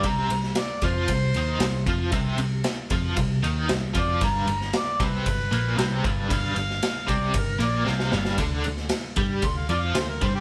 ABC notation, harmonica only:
X:1
M:4/4
L:1/16
Q:1/4=115
K:C
V:1 name="Harmonica"
_b4 d2 c8 z2 | z12 z2 d2 | _b4 d2 =B8 z2 | f6 d2 _B2 d2 f4 |
z8 c' f d f c _B c G |]